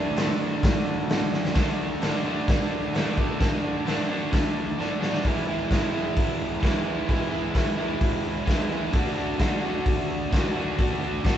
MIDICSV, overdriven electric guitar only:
0, 0, Header, 1, 2, 480
1, 0, Start_track
1, 0, Tempo, 460829
1, 1619, Time_signature, 4, 2, 24, 8
1, 11850, End_track
2, 0, Start_track
2, 0, Title_t, "Overdriven electric guitar"
2, 0, Program_c, 0, 29
2, 0, Note_on_c, 0, 50, 101
2, 0, Note_on_c, 0, 57, 94
2, 0, Note_on_c, 0, 62, 112
2, 1593, Note_off_c, 0, 50, 0
2, 1600, Note_off_c, 0, 57, 0
2, 1609, Note_on_c, 0, 50, 103
2, 1613, Note_off_c, 0, 62, 0
2, 1613, Note_on_c, 0, 57, 95
2, 1625, Note_on_c, 0, 62, 117
2, 2094, Note_off_c, 0, 50, 0
2, 2098, Note_on_c, 0, 50, 85
2, 2107, Note_off_c, 0, 57, 0
2, 2111, Note_on_c, 0, 57, 87
2, 2113, Note_off_c, 0, 62, 0
2, 2118, Note_on_c, 0, 62, 96
2, 2330, Note_off_c, 0, 50, 0
2, 2335, Note_on_c, 0, 50, 86
2, 2347, Note_off_c, 0, 57, 0
2, 2351, Note_off_c, 0, 62, 0
2, 2351, Note_on_c, 0, 57, 90
2, 2355, Note_on_c, 0, 62, 103
2, 2569, Note_off_c, 0, 50, 0
2, 2581, Note_on_c, 0, 50, 83
2, 2585, Note_off_c, 0, 57, 0
2, 2594, Note_off_c, 0, 62, 0
2, 2597, Note_on_c, 0, 57, 81
2, 2607, Note_on_c, 0, 62, 111
2, 3050, Note_off_c, 0, 50, 0
2, 3062, Note_on_c, 0, 50, 98
2, 3066, Note_off_c, 0, 57, 0
2, 3070, Note_off_c, 0, 62, 0
2, 3079, Note_on_c, 0, 57, 99
2, 3083, Note_on_c, 0, 62, 96
2, 3291, Note_off_c, 0, 50, 0
2, 3304, Note_off_c, 0, 57, 0
2, 3304, Note_on_c, 0, 50, 84
2, 3311, Note_off_c, 0, 62, 0
2, 3316, Note_on_c, 0, 57, 94
2, 3324, Note_on_c, 0, 62, 102
2, 3526, Note_off_c, 0, 50, 0
2, 3532, Note_off_c, 0, 57, 0
2, 3539, Note_on_c, 0, 50, 100
2, 3541, Note_off_c, 0, 62, 0
2, 3544, Note_on_c, 0, 57, 103
2, 3554, Note_on_c, 0, 62, 110
2, 4010, Note_off_c, 0, 50, 0
2, 4017, Note_off_c, 0, 57, 0
2, 4023, Note_on_c, 0, 50, 90
2, 4030, Note_on_c, 0, 57, 83
2, 4033, Note_off_c, 0, 62, 0
2, 4045, Note_on_c, 0, 62, 92
2, 4243, Note_off_c, 0, 50, 0
2, 4255, Note_on_c, 0, 50, 93
2, 4256, Note_off_c, 0, 57, 0
2, 4267, Note_off_c, 0, 62, 0
2, 4268, Note_on_c, 0, 57, 99
2, 4279, Note_on_c, 0, 62, 102
2, 4478, Note_off_c, 0, 50, 0
2, 4488, Note_off_c, 0, 57, 0
2, 4490, Note_on_c, 0, 50, 89
2, 4496, Note_off_c, 0, 62, 0
2, 4501, Note_on_c, 0, 57, 86
2, 4509, Note_on_c, 0, 62, 97
2, 4974, Note_off_c, 0, 50, 0
2, 4983, Note_off_c, 0, 57, 0
2, 4986, Note_on_c, 0, 50, 79
2, 4989, Note_off_c, 0, 62, 0
2, 4995, Note_on_c, 0, 57, 91
2, 5001, Note_on_c, 0, 62, 87
2, 5196, Note_off_c, 0, 50, 0
2, 5209, Note_off_c, 0, 57, 0
2, 5209, Note_on_c, 0, 50, 83
2, 5213, Note_off_c, 0, 62, 0
2, 5222, Note_on_c, 0, 57, 91
2, 5226, Note_on_c, 0, 62, 87
2, 5441, Note_off_c, 0, 50, 0
2, 5447, Note_off_c, 0, 57, 0
2, 5449, Note_off_c, 0, 62, 0
2, 5462, Note_on_c, 0, 52, 85
2, 5477, Note_on_c, 0, 56, 97
2, 5492, Note_on_c, 0, 59, 92
2, 5507, Note_on_c, 0, 64, 91
2, 5693, Note_off_c, 0, 64, 0
2, 5697, Note_on_c, 0, 64, 70
2, 5711, Note_off_c, 0, 59, 0
2, 5715, Note_on_c, 0, 59, 70
2, 5733, Note_off_c, 0, 56, 0
2, 5737, Note_on_c, 0, 56, 54
2, 5936, Note_off_c, 0, 52, 0
2, 5940, Note_on_c, 0, 52, 71
2, 5947, Note_off_c, 0, 56, 0
2, 5951, Note_on_c, 0, 56, 79
2, 5966, Note_off_c, 0, 59, 0
2, 5970, Note_on_c, 0, 59, 76
2, 5980, Note_off_c, 0, 64, 0
2, 5984, Note_on_c, 0, 64, 77
2, 6163, Note_off_c, 0, 64, 0
2, 6168, Note_on_c, 0, 64, 84
2, 6191, Note_off_c, 0, 59, 0
2, 6195, Note_on_c, 0, 59, 71
2, 6212, Note_off_c, 0, 56, 0
2, 6216, Note_on_c, 0, 56, 61
2, 6875, Note_off_c, 0, 52, 0
2, 6879, Note_on_c, 0, 52, 102
2, 6888, Note_off_c, 0, 56, 0
2, 6901, Note_off_c, 0, 59, 0
2, 6901, Note_on_c, 0, 56, 91
2, 6914, Note_on_c, 0, 59, 98
2, 6916, Note_off_c, 0, 64, 0
2, 6929, Note_on_c, 0, 64, 99
2, 7122, Note_off_c, 0, 64, 0
2, 7135, Note_on_c, 0, 64, 72
2, 7155, Note_off_c, 0, 59, 0
2, 7167, Note_on_c, 0, 59, 65
2, 7172, Note_off_c, 0, 56, 0
2, 7185, Note_on_c, 0, 56, 58
2, 7361, Note_off_c, 0, 52, 0
2, 7373, Note_on_c, 0, 52, 92
2, 7379, Note_off_c, 0, 56, 0
2, 7392, Note_on_c, 0, 56, 92
2, 7399, Note_off_c, 0, 59, 0
2, 7412, Note_on_c, 0, 59, 102
2, 7413, Note_off_c, 0, 64, 0
2, 7426, Note_on_c, 0, 64, 110
2, 7588, Note_off_c, 0, 64, 0
2, 7601, Note_on_c, 0, 64, 70
2, 7610, Note_off_c, 0, 59, 0
2, 7622, Note_on_c, 0, 59, 60
2, 7637, Note_off_c, 0, 56, 0
2, 7649, Note_on_c, 0, 56, 65
2, 7834, Note_off_c, 0, 52, 0
2, 7847, Note_on_c, 0, 52, 72
2, 7852, Note_off_c, 0, 56, 0
2, 7861, Note_off_c, 0, 59, 0
2, 7865, Note_on_c, 0, 56, 71
2, 7874, Note_on_c, 0, 59, 69
2, 7878, Note_off_c, 0, 64, 0
2, 7891, Note_on_c, 0, 64, 83
2, 8069, Note_off_c, 0, 64, 0
2, 8082, Note_on_c, 0, 64, 76
2, 8097, Note_off_c, 0, 59, 0
2, 8110, Note_on_c, 0, 59, 68
2, 8125, Note_off_c, 0, 56, 0
2, 8138, Note_on_c, 0, 56, 62
2, 8335, Note_off_c, 0, 52, 0
2, 8804, Note_on_c, 0, 52, 100
2, 8813, Note_off_c, 0, 56, 0
2, 8826, Note_on_c, 0, 56, 93
2, 8833, Note_off_c, 0, 59, 0
2, 8840, Note_off_c, 0, 64, 0
2, 8845, Note_on_c, 0, 59, 110
2, 8853, Note_on_c, 0, 64, 101
2, 9041, Note_off_c, 0, 64, 0
2, 9053, Note_on_c, 0, 64, 77
2, 9060, Note_off_c, 0, 59, 0
2, 9073, Note_on_c, 0, 59, 74
2, 9083, Note_off_c, 0, 56, 0
2, 9095, Note_on_c, 0, 56, 67
2, 9279, Note_off_c, 0, 52, 0
2, 9284, Note_off_c, 0, 64, 0
2, 9285, Note_on_c, 0, 50, 104
2, 9293, Note_off_c, 0, 59, 0
2, 9304, Note_off_c, 0, 56, 0
2, 9308, Note_on_c, 0, 57, 105
2, 9318, Note_on_c, 0, 62, 96
2, 9338, Note_on_c, 0, 66, 105
2, 9524, Note_off_c, 0, 66, 0
2, 9528, Note_on_c, 0, 66, 75
2, 9555, Note_off_c, 0, 62, 0
2, 9559, Note_on_c, 0, 62, 66
2, 9575, Note_off_c, 0, 57, 0
2, 9579, Note_on_c, 0, 57, 59
2, 9758, Note_off_c, 0, 50, 0
2, 9762, Note_on_c, 0, 50, 79
2, 9777, Note_off_c, 0, 57, 0
2, 9781, Note_on_c, 0, 57, 76
2, 9796, Note_off_c, 0, 62, 0
2, 9800, Note_on_c, 0, 62, 88
2, 9811, Note_off_c, 0, 66, 0
2, 9816, Note_on_c, 0, 66, 82
2, 10007, Note_off_c, 0, 66, 0
2, 10011, Note_on_c, 0, 66, 77
2, 10034, Note_off_c, 0, 62, 0
2, 10038, Note_on_c, 0, 62, 71
2, 10056, Note_off_c, 0, 57, 0
2, 10060, Note_on_c, 0, 57, 59
2, 10731, Note_off_c, 0, 50, 0
2, 10735, Note_on_c, 0, 50, 90
2, 10750, Note_off_c, 0, 57, 0
2, 10754, Note_on_c, 0, 57, 97
2, 10763, Note_off_c, 0, 62, 0
2, 10767, Note_on_c, 0, 62, 102
2, 10775, Note_off_c, 0, 66, 0
2, 10779, Note_on_c, 0, 66, 116
2, 10979, Note_off_c, 0, 66, 0
2, 10983, Note_on_c, 0, 66, 74
2, 11003, Note_off_c, 0, 62, 0
2, 11007, Note_on_c, 0, 62, 67
2, 11021, Note_off_c, 0, 57, 0
2, 11026, Note_on_c, 0, 57, 65
2, 11208, Note_off_c, 0, 50, 0
2, 11212, Note_on_c, 0, 50, 100
2, 11227, Note_off_c, 0, 57, 0
2, 11231, Note_on_c, 0, 57, 100
2, 11241, Note_off_c, 0, 62, 0
2, 11245, Note_on_c, 0, 62, 90
2, 11254, Note_off_c, 0, 66, 0
2, 11258, Note_on_c, 0, 66, 102
2, 11441, Note_off_c, 0, 66, 0
2, 11445, Note_on_c, 0, 66, 73
2, 11474, Note_off_c, 0, 62, 0
2, 11478, Note_on_c, 0, 62, 71
2, 11498, Note_off_c, 0, 57, 0
2, 11503, Note_on_c, 0, 57, 60
2, 11690, Note_off_c, 0, 50, 0
2, 11694, Note_on_c, 0, 50, 66
2, 11706, Note_off_c, 0, 57, 0
2, 11710, Note_on_c, 0, 57, 72
2, 11721, Note_off_c, 0, 62, 0
2, 11725, Note_on_c, 0, 62, 88
2, 11741, Note_off_c, 0, 66, 0
2, 11745, Note_on_c, 0, 66, 82
2, 11850, Note_off_c, 0, 50, 0
2, 11850, Note_off_c, 0, 57, 0
2, 11850, Note_off_c, 0, 62, 0
2, 11850, Note_off_c, 0, 66, 0
2, 11850, End_track
0, 0, End_of_file